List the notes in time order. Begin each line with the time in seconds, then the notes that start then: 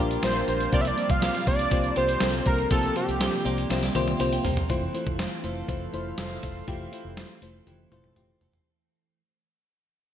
Already playing: F3 G3 A#3 D4 F4 C5 D5 E5 F5
0.00 A#1 F4 G4 A#4
0.11 closed hi-hat
0.23 A#1 A#3 D4 F4 G4 C5, snare, closed hi-hat, tambourine
0.36 closed hi-hat
0.47 A#1 A#3 D4 F4 G4 C5, closed hi-hat
0.60 closed hi-hat
0.72 C2 C3 F3 A#3 C4 D4 F4 G4 C5 D5, kick, closed hi-hat
0.81 E5, closed hi-hat
0.87 D5
0.97 A#3 C4 F4 G4 C5, closed hi-hat
1.10 C2 F5, kick, closed hi-hat
1.22 A#3 C4 F4 G4 C5, snare, closed hi-hat, tambourine
1.35 closed hi-hat
1.47 C2 A#3 C4 F4 G4 C5 D5, kick, closed hi-hat
1.59 closed hi-hat
1.71 C2 A#3 C4 F4 G4 C5, kick, closed hi-hat
1.84 closed hi-hat
1.96 C2 A#3 C4 F4 G4 C5, closed hi-hat
2.09 closed hi-hat
2.20 C2 A#3 C4 F4 G4 A4, snare, closed hi-hat, tambourine
2.33 closed hi-hat
2.46 C2 A#3 C4 F4 G4 A#4, kick, closed hi-hat
2.58 closed hi-hat
2.71 C2 F3 A#3 C4 F4 G4 A4 C5, kick, closed hi-hat
2.83 closed hi-hat
2.95 A#3 C4 F4 G4 C5, closed hi-hat
3.08 C2, closed hi-hat
3.20 A#3 C4 F4 G4 C5, snare, closed hi-hat, tambourine
3.33 closed hi-hat
3.45 C2 A#3 C4 F4 G4 C5 D5, closed hi-hat
3.58 closed hi-hat
3.70 C2 A#3 C4 F4 G4 C5 E5, snare, closed hi-hat
3.83 D5, snare, closed hi-hat
3.95 C2 A#3 C4 F4 G4 C5 E5, closed hi-hat, high tom
4.08 closed hi-hat, high tom
4.19 C2 A#3 C4 F4 G4 C5 F5, closed hi-hat
4.33 G5, closed hi-hat
4.44 C2 A#3 C4 F4 G4 C5, floor tom, open hi-hat
4.57 closed hi-hat, floor tom
4.69 F1 E3 A3 C4 E4 F4 A4 C5 F5, kick, closed hi-hat
4.94 E3 A3 E4 F4 C5, closed hi-hat
5.07 F1, kick
5.18 A3 C4 E4 F4 C5, snare, closed hi-hat
5.43 F1 A3 E4 F4 C5, closed hi-hat
5.68 F1 E3 A3 E4 F4 C5, kick, closed hi-hat
5.93 F1 A3 E4 F4 C5, closed hi-hat
6.18 F1 A3 C4 E4 F4 A4, snare, closed hi-hat
6.43 F1 A3 E4 F4 C5, kick, closed hi-hat
6.67 F1 E3 A3 C4 E4 F4 G4, kick, closed hi-hat
6.92 E3 A3 E4 F4 C5, closed hi-hat
7.05 F1
7.17 A3 C4 E4 F4 C5, snare, closed hi-hat
7.42 F1 A3 E4 F4 C5, closed hi-hat
7.67 F1 E3 A3 E4 F4 G4, closed hi-hat, high tom
7.91 F1 A3 E4 F4 C5, closed hi-hat, mid tom
8.04 mid tom
8.15 F1 A3 C4 E4 F4 G4, closed hi-hat, mid tom
8.41 F1 A3 E4 F4 C5, closed hi-hat, floor tom
8.53 floor tom